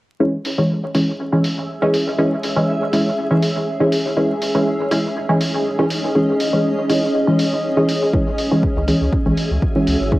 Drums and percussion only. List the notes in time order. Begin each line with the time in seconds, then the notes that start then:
0.45 open hi-hat
0.95 open hi-hat
1.44 open hi-hat
1.94 open hi-hat
2.43 open hi-hat
2.93 open hi-hat
3.42 open hi-hat
3.92 open hi-hat
4.42 open hi-hat
4.91 open hi-hat
5.41 open hi-hat
5.90 open hi-hat
6.40 open hi-hat
6.89 open hi-hat
7.39 open hi-hat
7.89 open hi-hat
8.13 kick
8.38 open hi-hat
8.63 kick
8.88 open hi-hat
9.13 kick
9.37 open hi-hat
9.62 kick
9.87 open hi-hat
10.12 kick